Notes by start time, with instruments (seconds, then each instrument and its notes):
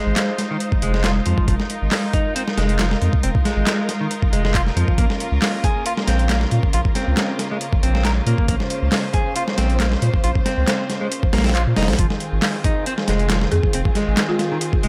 Already playing: clean electric guitar G#3, string section G#3 D#4 F4 C5
0.07 sub bass G#1
0.16 snare, clap, closed hi-hat
0.38 snare, closed hi-hat
0.51 clean electric guitar D#3
0.60 closed hi-hat
0.72 kick
0.82 sub bass F1, clean electric guitar G#3, closed hi-hat
0.94 clean electric guitar G#3, snare
1.04 clean electric guitar F4, snare, clap, closed hi-hat
1.26 sub bass F2, clean electric guitar F3, closed hi-hat
1.38 kick
1.48 sub bass F1, clean electric guitar F3, string section A#4, kick, closed hi-hat
1.60 snare
1.70 closed hi-hat
1.82 sub bass G#1
1.92 snare, clap, open hi-hat
2.13 clean electric guitar D#4, kick, closed hi-hat
2.36 clean electric guitar C4, closed hi-hat
2.48 snare
2.58 sub bass F1, clean electric guitar G#3, snare, closed hi-hat
2.69 closed hi-hat
2.79 clean electric guitar F3, snare, clap, closed hi-hat
2.91 snare
3.02 sub bass F2, closed hi-hat
3.13 kick
3.23 sub bass F1, clean electric guitar C4, closed hi-hat
3.35 kick
3.45 clean electric guitar G#3, snare, closed hi-hat
3.57 sub bass G#1
3.67 snare, clap, closed hi-hat
3.89 snare, closed hi-hat
4.01 clean electric guitar D#3
4.11 closed hi-hat
4.22 kick
4.32 sub bass F1, clean electric guitar G#3, closed hi-hat
4.45 clean electric guitar G#3, snare
4.54 clean electric guitar F4, kick, clap, closed hi-hat
4.67 snare
4.76 sub bass F2, clean electric guitar F3, closed hi-hat
4.88 kick
4.98 sub bass A#1, string section C#3 A#3, clean electric guitar A#3, kick, closed hi-hat
5.10 snare
5.20 closed hi-hat
5.32 sub bass C#2
5.42 snare, clap, open hi-hat
5.64 clean electric guitar G#4, kick, closed hi-hat
5.86 clean electric guitar F4, closed hi-hat
5.97 snare
6.08 sub bass A#1, clean electric guitar C4, snare, closed hi-hat
6.19 closed hi-hat
6.29 clean electric guitar A#3, snare, clap, closed hi-hat
6.41 snare
6.51 sub bass A#2, closed hi-hat
6.63 kick
6.73 sub bass A#1, clean electric guitar F4, closed hi-hat
6.85 kick
6.95 clean electric guitar C4, snare, closed hi-hat
7.08 sub bass C#2
7.17 snare, clap, closed hi-hat
7.39 snare, closed hi-hat
7.51 clean electric guitar G#3
7.61 closed hi-hat
7.73 kick
7.83 sub bass A#1, clean electric guitar C4, closed hi-hat
7.95 clean electric guitar C4, snare
8.05 clean electric guitar A#4, snare, clap, closed hi-hat
8.27 sub bass A#2, clean electric guitar A#3, closed hi-hat
8.38 kick
8.48 sub bass A#1, clean electric guitar A#3, string section C5, kick, closed hi-hat
8.60 snare
8.70 closed hi-hat
8.82 sub bass C#2
8.92 snare, clap, open hi-hat
9.13 clean electric guitar G#4, kick, closed hi-hat
9.36 clean electric guitar F4, closed hi-hat
9.48 snare
9.58 sub bass A#1, clean electric guitar C4, snare, closed hi-hat
9.70 closed hi-hat
9.80 clean electric guitar A#3, snare, clap, closed hi-hat
9.92 snare
10.02 sub bass A#2, closed hi-hat
10.14 kick
10.24 sub bass A#1, clean electric guitar F4, closed hi-hat
10.35 kick
10.46 clean electric guitar C4, snare, closed hi-hat
10.58 sub bass C#2
10.68 snare, clap, closed hi-hat
10.90 snare, closed hi-hat
11.01 clean electric guitar G#3
11.12 closed hi-hat
11.23 kick
11.33 sub bass A#1, clean electric guitar A#3, snare, open hi-hat
11.38 snare, open hi-hat
11.44 clean electric guitar C4, snare, open hi-hat
11.49 snare, open hi-hat
11.55 clean electric guitar F4, clap, closed hi-hat
11.67 sub bass A#2
11.76 sub bass F1, clean electric guitar D#4, snare, open hi-hat
11.83 snare, open hi-hat
11.88 sub bass A#1, snare, open hi-hat
11.93 snare, open hi-hat
11.99 sub bass F1, string section D#3 C4 F4 G#4, clean electric guitar F3, kick, closed hi-hat
12.10 snare
12.20 closed hi-hat
12.33 sub bass G#1
12.42 snare, clap, open hi-hat
12.64 clean electric guitar D#4, kick, closed hi-hat
12.86 clean electric guitar C4, closed hi-hat
12.98 snare
13.08 sub bass F1, clean electric guitar G#3, snare, closed hi-hat
13.19 closed hi-hat
13.30 clean electric guitar F3, snare, clap, closed hi-hat
13.41 snare
13.52 sub bass F2, marimba G#4, closed hi-hat
13.63 kick
13.73 sub bass F1, clean electric guitar C4, closed hi-hat
13.85 kick
13.95 clean electric guitar G#3, snare, closed hi-hat
14.08 sub bass G#1
14.17 snare, clap, closed hi-hat
14.29 marimba F4
14.39 marimba F4, snare, closed hi-hat
14.52 clean electric guitar D#3
14.61 closed hi-hat
14.73 kick
14.83 sub bass F1, clean electric guitar G#3, closed hi-hat